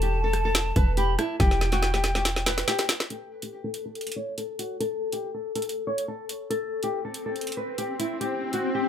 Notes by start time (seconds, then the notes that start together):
Already playing: E1 A5
0.02 G4, closed hi-hat
0.24 A4
0.33 cross-stick, closed hi-hat
0.45 A4
0.55 snare, closed hi-hat
0.76 E1 B4, kick, closed hi-hat
0.97 G4 B5, closed hi-hat
1.19 E4 A5, cross-stick, closed hi-hat
1.40 E1 G4 G5, kick, snare, closed hi-hat
1.51 snare
1.61 snare
1.72 F#4, snare, closed hi-hat
1.83 snare
1.94 G4, snare
2.04 snare, closed hi-hat
2.15 G4, snare
2.25 snare, closed hi-hat
2.36 snare
2.46 B4, snare
2.58 snare, closed hi-hat
2.68 G4, snare
2.79 snare, closed hi-hat
2.89 snare, closed hi-hat
3.00 snare
3.10 A4, closed hi-hat
3.42 G4, closed hi-hat
3.64 A4
3.74 closed hi-hat
3.86 A4
3.95 closed hi-hat
4.01 closed hi-hat
4.07 closed hi-hat
4.12 closed hi-hat
4.16 C#5
4.38 A4, closed hi-hat
4.59 F#4, closed hi-hat
4.80 A4, closed hi-hat
5.12 G4, closed hi-hat
5.34 A4
5.55 A4, closed hi-hat
5.62 closed hi-hat
5.69 closed hi-hat
5.87 C#5
5.98 closed hi-hat
6.08 A4
6.29 closed hi-hat
6.50 A4, closed hi-hat, swell
6.83 G4, closed hi-hat
7.05 A4
7.14 closed hi-hat
7.26 A4
7.36 closed hi-hat
7.41 closed hi-hat
7.47 closed hi-hat
7.52 closed hi-hat
7.57 B4
7.78 G4, closed hi-hat
7.99 E4, closed hi-hat
8.21 G4, closed hi-hat
8.53 F#4, closed hi-hat
8.75 G4